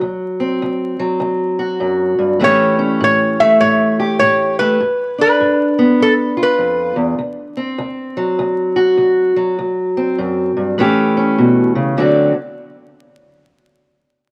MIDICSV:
0, 0, Header, 1, 3, 480
1, 0, Start_track
1, 0, Tempo, 596421
1, 32, Time_signature, 4, 2, 24, 8
1, 11519, End_track
2, 0, Start_track
2, 0, Title_t, "Resonator guitar played with a steel bar"
2, 0, Program_c, 0, 25
2, 1964, Note_on_c, 0, 73, 105
2, 2435, Note_off_c, 0, 73, 0
2, 2445, Note_on_c, 0, 73, 87
2, 2737, Note_on_c, 0, 76, 103
2, 2750, Note_off_c, 0, 73, 0
2, 2902, Note_on_c, 0, 73, 100
2, 2918, Note_off_c, 0, 76, 0
2, 3355, Note_off_c, 0, 73, 0
2, 3376, Note_on_c, 0, 73, 93
2, 3690, Note_off_c, 0, 73, 0
2, 3694, Note_on_c, 0, 71, 93
2, 4186, Note_off_c, 0, 71, 0
2, 4195, Note_on_c, 0, 71, 89
2, 4845, Note_off_c, 0, 71, 0
2, 4848, Note_on_c, 0, 69, 80
2, 4929, Note_off_c, 0, 69, 0
2, 5173, Note_on_c, 0, 71, 82
2, 5605, Note_off_c, 0, 71, 0
2, 11519, End_track
3, 0, Start_track
3, 0, Title_t, "Steel-string acoustic guitar"
3, 0, Program_c, 1, 25
3, 0, Note_on_c, 1, 54, 52
3, 10, Note_on_c, 1, 38, 70
3, 322, Note_on_c, 1, 60, 59
3, 465, Note_off_c, 1, 38, 0
3, 501, Note_on_c, 1, 38, 79
3, 791, Note_off_c, 1, 54, 0
3, 801, Note_on_c, 1, 54, 63
3, 951, Note_off_c, 1, 38, 0
3, 965, Note_on_c, 1, 38, 78
3, 1280, Note_on_c, 1, 66, 64
3, 1422, Note_off_c, 1, 38, 0
3, 1449, Note_on_c, 1, 42, 63
3, 1756, Note_off_c, 1, 42, 0
3, 1760, Note_on_c, 1, 43, 60
3, 1922, Note_off_c, 1, 66, 0
3, 1923, Note_off_c, 1, 60, 0
3, 1928, Note_on_c, 1, 45, 75
3, 1934, Note_on_c, 1, 52, 59
3, 1938, Note_off_c, 1, 54, 0
3, 1941, Note_on_c, 1, 57, 64
3, 1944, Note_off_c, 1, 43, 0
3, 1947, Note_on_c, 1, 61, 61
3, 1950, Note_on_c, 1, 67, 69
3, 2234, Note_off_c, 1, 61, 0
3, 2243, Note_on_c, 1, 61, 59
3, 2384, Note_off_c, 1, 45, 0
3, 2418, Note_on_c, 1, 45, 78
3, 2728, Note_off_c, 1, 57, 0
3, 2737, Note_on_c, 1, 57, 64
3, 2870, Note_off_c, 1, 45, 0
3, 2907, Note_on_c, 1, 45, 69
3, 3206, Note_off_c, 1, 67, 0
3, 3216, Note_on_c, 1, 67, 68
3, 3355, Note_off_c, 1, 45, 0
3, 3390, Note_on_c, 1, 45, 76
3, 3694, Note_off_c, 1, 57, 0
3, 3704, Note_on_c, 1, 57, 56
3, 3836, Note_off_c, 1, 45, 0
3, 3844, Note_off_c, 1, 52, 0
3, 3846, Note_off_c, 1, 61, 0
3, 3852, Note_off_c, 1, 67, 0
3, 3856, Note_off_c, 1, 57, 0
3, 3866, Note_on_c, 1, 43, 76
3, 4171, Note_on_c, 1, 62, 58
3, 4315, Note_off_c, 1, 43, 0
3, 4349, Note_on_c, 1, 43, 82
3, 4657, Note_on_c, 1, 59, 60
3, 4797, Note_off_c, 1, 43, 0
3, 4829, Note_on_c, 1, 43, 74
3, 5126, Note_on_c, 1, 65, 64
3, 5278, Note_off_c, 1, 43, 0
3, 5299, Note_on_c, 1, 41, 66
3, 5598, Note_off_c, 1, 41, 0
3, 5601, Note_on_c, 1, 40, 62
3, 5770, Note_off_c, 1, 65, 0
3, 5775, Note_off_c, 1, 59, 0
3, 5780, Note_off_c, 1, 40, 0
3, 5783, Note_on_c, 1, 38, 70
3, 6089, Note_off_c, 1, 62, 0
3, 6092, Note_on_c, 1, 60, 63
3, 6236, Note_off_c, 1, 38, 0
3, 6265, Note_on_c, 1, 38, 83
3, 6574, Note_on_c, 1, 54, 63
3, 6717, Note_off_c, 1, 38, 0
3, 6751, Note_on_c, 1, 38, 83
3, 7050, Note_on_c, 1, 66, 71
3, 7201, Note_off_c, 1, 38, 0
3, 7223, Note_on_c, 1, 38, 75
3, 7527, Note_off_c, 1, 54, 0
3, 7536, Note_on_c, 1, 54, 57
3, 7677, Note_off_c, 1, 38, 0
3, 7693, Note_off_c, 1, 66, 0
3, 7695, Note_off_c, 1, 60, 0
3, 7715, Note_on_c, 1, 38, 73
3, 8024, Note_on_c, 1, 60, 57
3, 8163, Note_off_c, 1, 38, 0
3, 8195, Note_on_c, 1, 42, 66
3, 8501, Note_off_c, 1, 42, 0
3, 8504, Note_on_c, 1, 43, 60
3, 8660, Note_off_c, 1, 60, 0
3, 8675, Note_on_c, 1, 45, 79
3, 8678, Note_off_c, 1, 54, 0
3, 8681, Note_off_c, 1, 43, 0
3, 8681, Note_on_c, 1, 52, 65
3, 8690, Note_on_c, 1, 57, 67
3, 8693, Note_on_c, 1, 61, 61
3, 8699, Note_on_c, 1, 67, 68
3, 8980, Note_off_c, 1, 61, 0
3, 8990, Note_on_c, 1, 61, 57
3, 9123, Note_off_c, 1, 45, 0
3, 9162, Note_on_c, 1, 47, 62
3, 9456, Note_off_c, 1, 47, 0
3, 9459, Note_on_c, 1, 49, 59
3, 9620, Note_off_c, 1, 52, 0
3, 9623, Note_off_c, 1, 61, 0
3, 9625, Note_off_c, 1, 57, 0
3, 9629, Note_off_c, 1, 67, 0
3, 9633, Note_on_c, 1, 38, 68
3, 9639, Note_off_c, 1, 49, 0
3, 9639, Note_on_c, 1, 50, 59
3, 9643, Note_on_c, 1, 54, 55
3, 9653, Note_on_c, 1, 60, 59
3, 9658, Note_on_c, 1, 66, 51
3, 9910, Note_off_c, 1, 38, 0
3, 9913, Note_off_c, 1, 50, 0
3, 9914, Note_off_c, 1, 54, 0
3, 9920, Note_off_c, 1, 60, 0
3, 9922, Note_off_c, 1, 66, 0
3, 11519, End_track
0, 0, End_of_file